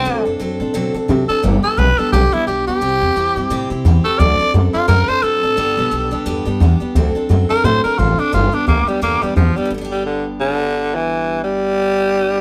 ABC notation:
X:1
M:4/4
L:1/8
Q:"Swing" 1/4=174
K:G
V:1 name="Tenor saxophone"
C z6 A | z A B A G E G G- | G4- G z2 A | d2 z =F _B c A2- |
A4 z4 | z3 _B c B =F D | =F D _B, G, B, G, =F, G, | z G, D, z D,3 E,- |
E,2 G,6 |]
V:2 name="Steel-string acoustic guitar"
[D,F,CDA] [CDA] [F,CDA] [CDA] [D,F,CDA] [CDA] [F,CDA] [CDA] | [G,,D,G,B,DG] [G,B,DG] [G,B,DG] [G,B,DG] [G,,D,G,B,DG] [G,B,DG] [G,B,DG] [G,B,DG] | [C,G,CEG] [CEG] [G,CEG] [CEG] [C,G,CEG] [CEG] [G,CEG] [CEG] | [D,F,CDA] [CDA] [F,CDA] [CDA] [D,F,CDA] [CDA] [F,CDA] [CDA] |
[G,,D,G,B,DG] [G,B,DG] [G,B,DG] [G,B,DG] [G,,D,G,B,DG] [G,B,DG] [G,B,DG] [G,B,DG] | [D,F,CDA] [CDA] [F,CDA] [CDA] [D,F,CDA] [CDA] [F,CDA] [CDA] | [G,,D,G,B,DG] [G,B,DG] [G,B,DG] [G,B,DG] [G,,D,G,B,DG] [G,B,DG] [G,B,DG] [G,B,DG] | [G,,D,G,B,DG]8- |
[G,,D,G,B,DG]8 |]
V:3 name="Upright bass" clef=bass
D,, F,, F,, A,, B,, D, C, z | G,,, z B,,, z B,,, z B,,, D,, | C,, E,, E,, G,, A,, C, E,, z | D,, z F,, z F,, z F,, A,, |
G,,, B,,, B,,, D,, E,, G,, E,, z | D,, z F,, z A,, z A,,, z | G,,, z D,, z E,, E,, E,, z | G,,,8- |
G,,,8 |]